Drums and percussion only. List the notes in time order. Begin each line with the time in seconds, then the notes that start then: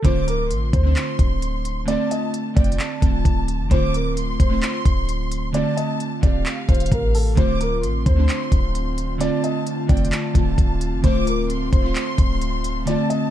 0.05 kick, closed hi-hat
0.28 closed hi-hat
0.51 closed hi-hat
0.73 kick, closed hi-hat
0.96 clap, closed hi-hat
1.19 kick, closed hi-hat
1.42 closed hi-hat
1.65 closed hi-hat
1.88 closed hi-hat
2.11 closed hi-hat
2.34 closed hi-hat
2.57 kick, closed hi-hat
2.64 closed hi-hat
2.72 closed hi-hat
2.80 clap, closed hi-hat
3.02 kick, closed hi-hat
3.25 kick, closed hi-hat
3.48 closed hi-hat
3.71 kick, closed hi-hat
3.94 closed hi-hat
4.17 closed hi-hat
4.40 kick, closed hi-hat
4.63 clap, closed hi-hat
4.85 kick, closed hi-hat
5.09 closed hi-hat
5.32 closed hi-hat
5.54 closed hi-hat
5.78 closed hi-hat
6.00 closed hi-hat
6.23 kick, closed hi-hat
6.46 clap, closed hi-hat
6.69 kick, closed hi-hat
6.75 closed hi-hat
6.80 closed hi-hat
6.86 closed hi-hat
6.92 kick, closed hi-hat
7.15 open hi-hat
7.37 kick, closed hi-hat
7.61 closed hi-hat
7.83 closed hi-hat
8.06 kick, closed hi-hat
8.29 clap, closed hi-hat
8.52 kick, closed hi-hat
8.75 closed hi-hat
8.98 closed hi-hat
9.21 closed hi-hat
9.44 closed hi-hat
9.67 closed hi-hat
9.89 kick, closed hi-hat
9.97 closed hi-hat
10.05 closed hi-hat
10.12 clap, closed hi-hat
10.35 kick, closed hi-hat
10.58 kick, closed hi-hat
10.81 closed hi-hat
11.04 kick, closed hi-hat
11.27 closed hi-hat
11.50 closed hi-hat
11.73 kick, closed hi-hat
11.95 clap, closed hi-hat
12.18 kick, closed hi-hat
12.41 closed hi-hat
12.64 closed hi-hat
12.87 closed hi-hat
13.10 closed hi-hat